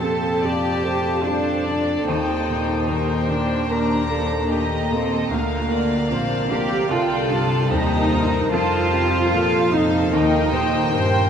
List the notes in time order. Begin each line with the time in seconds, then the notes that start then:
Already playing: F2 A#2 C3 F3 F4 G4 A4 A5
0.00 C3 G4 A4
0.15 C4
0.41 F2 F4 G4 D5
0.70 G4
0.84 A3 C5
0.99 F4
1.24 G3 D4 G4 A4 C5
1.53 A4
1.66 C3 D5
1.81 C4
2.06 D#2 D#3 D#4 C5 G5
2.36 G4
2.50 A#2
2.63 A#3
2.88 A#2 G4 A#4 C5 G5
3.29 A#2 D4
3.69 D#2 A#3 D4 A#4 A#5
3.97 G4
4.09 A#3 A4
4.24 A#3
4.49 A3 G4 D#5 A#5
4.92 A#2 C4 A4
5.06 D4
5.31 D2 D3 A#3 A#4 F5
5.59 F4
5.72 D3 D5
5.85 A#3
6.11 A#1 C3 F4 C5
6.38 C5
6.51 D3 G4 A#4
6.64 C4
6.90 C2 C3 F4 A4 D5 G5
7.17 G4
7.30 G2 A5
7.44 G3
7.71 D#2 F2 D#4 G4 C5 A#5
7.99 A#4
8.11 G2 A#4
8.26 C4
8.52 F2 F3 F4 A4 C5 A5
8.79 G4
8.92 C3 G4
9.06 F4
9.31 A#2 G4 A4 F5
9.59 A4
9.72 C3 D#4 A4
9.85 C4
10.12 D#2 D#3 D#4 A#4 D#5 G5
10.40 G4
10.52 A#2 C5
10.66 A#3
10.92 G2 A#2 G4 A#4 C5
11.20 A#4